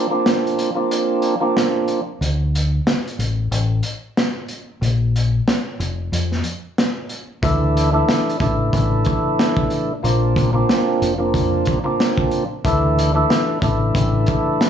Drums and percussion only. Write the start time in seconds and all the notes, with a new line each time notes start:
0.26 snare, closed hi-hat
0.47 closed hi-hat
0.59 closed hi-hat
0.91 closed hi-hat
1.22 closed hi-hat
1.57 snare, closed hi-hat
1.88 closed hi-hat
2.22 closed hi-hat
2.55 closed hi-hat
2.87 snare, closed hi-hat
3.08 closed hi-hat
3.20 closed hi-hat
3.52 closed hi-hat
3.83 closed hi-hat
4.17 snare, closed hi-hat
4.48 closed hi-hat
4.83 closed hi-hat
5.16 closed hi-hat
5.48 snare, closed hi-hat
5.80 closed hi-hat
6.13 closed hi-hat
6.32 snare
6.44 closed hi-hat
6.78 snare, closed hi-hat
7.09 closed hi-hat
7.43 kick, closed hi-hat
7.77 closed hi-hat
8.09 snare, closed hi-hat
8.29 closed hi-hat
8.40 kick, closed hi-hat
8.73 kick, closed hi-hat
9.05 kick, closed hi-hat
9.39 snare, closed hi-hat
9.57 kick
9.70 closed hi-hat
10.05 closed hi-hat
10.36 kick, closed hi-hat
10.69 snare, closed hi-hat
11.02 closed hi-hat
11.34 kick, closed hi-hat
11.65 kick, closed hi-hat
12.00 snare, closed hi-hat
12.18 kick
12.31 closed hi-hat
12.65 kick, closed hi-hat
12.99 closed hi-hat
13.30 snare, closed hi-hat
13.62 kick, closed hi-hat
13.95 kick, closed hi-hat
14.26 kick, closed hi-hat
14.61 snare, closed hi-hat